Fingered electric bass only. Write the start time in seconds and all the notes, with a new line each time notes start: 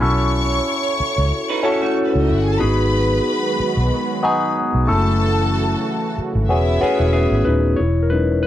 0.02 B1
1.00 muted fingered electric bass stroke
1.18 C#2
2.15 C#2
2.30 G1
2.62 G#1
3.60 muted fingered electric bass stroke
3.77 B1
4.75 B1
4.90 F#1
6.18 muted fingered electric bass stroke
6.35 G#1
6.50 E1
7.00 E1
7.31 G#1
7.47 D#1
7.80 E1